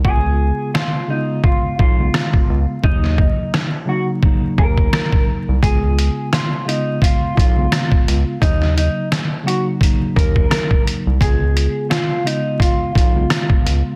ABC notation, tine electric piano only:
X:1
M:4/4
L:1/16
Q:"Swing 16ths" 1/4=86
K:Dbmix
V:1 name="Tine electric piano"
[D,A,CF]6 [D,A,CF]4 z [D,A,CF]4- [D,A,CF] | [D,G,B,E]4- [D,G,B,E] z [D,G,B,E]2 [D,G,B,E]6- [D,G,B,E] z | [D,A,CF]6 [D,A,CF]4 z [D,A,CF]4- [D,A,CF] | [D,G,B,E]4- [D,G,B,E] z [D,G,B,E]2 [D,G,B,E]6- [D,G,B,E] z |
[D,A,CF]6 [D,A,CF]4 z [D,A,CF]4- [D,A,CF] |]